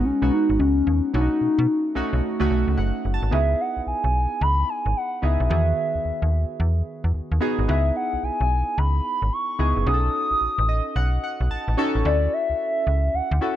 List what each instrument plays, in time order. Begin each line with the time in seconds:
Already playing: synth keys G#3 B3 D#4 F#4
0.05 soft synth lead C#4
0.22 fm bass B1, synth keys G#3 B3 D#4 F#4
0.32 soft synth lead D#4
0.50 fm bass G#1
0.59 fm bass C#2, soft synth lead C#4
0.87 fm bass D#2
1.13 fm bass B1, synth keys A3 C#4 D4 F#4, soft synth lead D#4
1.21 synth keys D#4
1.41 fm bass B2
1.58 fm bass B2
1.95 fm bass B1, synth keys A3 C#4 D#4 F#4
2.13 fm bass B1
2.39 fm bass C#2, synth keys A3 C#4 D#4 F#4
2.51 fm bass B1
2.68 fm bass C#2
2.77 fm bass F#1, synth keys F#5
3.05 fm bass F#1
3.14 synth keys A5
3.22 fm bass G#1
3.31 fm bass C#2, synth keys B3 D#4 E4 G#4, soft synth lead E5
3.61 soft synth lead F#5
3.77 fm bass B1
3.87 fm bass B1, soft synth lead G#5
4.04 fm bass B1
4.41 fm bass C#2, soft synth lead B5
4.69 soft synth lead G#5
4.86 fm bass G#1
4.97 soft synth lead F#5
5.22 fm bass C#2, synth keys B3 D#4 E4 G#4, soft synth lead E5
5.40 fm bass B1
5.49 fm bass E2, synth keys D#3 B3 F#4 G#4
5.95 fm bass D#2
6.05 fm bass D#2
6.22 fm bass D#2
6.60 fm bass E2
7.04 fm bass E2
7.14 fm bass D#2
7.32 fm bass D#2
7.40 synth keys B3 D#4 F#4 G#4
7.59 fm bass G#1
7.68 fm bass C#2, synth keys B3 D#4 E4 G#4, soft synth lead E5
7.97 soft synth lead F#5
8.13 fm bass B1
8.23 fm bass B1, soft synth lead G#5
8.41 fm bass B1
8.78 fm bass C#2, soft synth lead B5
9.22 fm bass G#1
9.33 soft synth lead C#6
9.59 fm bass C#2, synth keys B3 D#4 E4 G#4
9.77 fm bass F#1
9.86 fm bass B1, synth keys C#4 D#4 F#4 G#4, soft synth lead D#6
9.94 synth keys A4
10.31 fm bass A1
10.41 fm bass A1
10.58 fm bass A1
10.69 synth keys D#5
10.96 fm bass B1, synth keys F#5
11.24 synth keys F#5
11.40 fm bass B1
11.51 synth keys A5
11.68 fm bass A1
11.77 synth keys C#4 D#4 F#4 A4 C#6
11.95 fm bass A1
12.05 fm bass D2, synth keys C#4 E4 F#4 A4, soft synth lead D5
12.33 soft synth lead E5
12.50 fm bass C#2
12.87 fm bass C#2
13.14 fm bass D2, soft synth lead F#5
13.31 fm bass D2
13.41 synth keys C#4 E4 F#4 A4, soft synth lead F#5